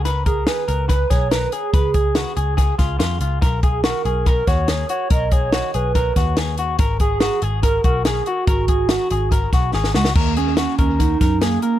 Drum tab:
CC |----------------|----------------|----------------|----------------|
HH |x-x-x-x-x-x-x-x-|x-x-x-x-x-x-x-x-|x-x-x-x-x-x-x-x-|x-x-x-x-x-x-x-x-|
SD |----o-----o-o---|----o-----o-o---|----o-----o-o---|----o-----o-o---|
BD |--o-----o-o-----|o-o-----o-o-----|o-o-----o-o-----|o-o-----o-o-----|

CC |----------------|----------------|x---------------|
HH |x-x-x-x-x-x-x-x-|x-x-x-x-x-x-----|--x-x-x-x-x-x-x-|
SD |----o-------o---|----o-----o-oooo|----o-----o-o---|
BD |o-o-----o-o-----|o-o-----o-o-----|o-----o-o-o-----|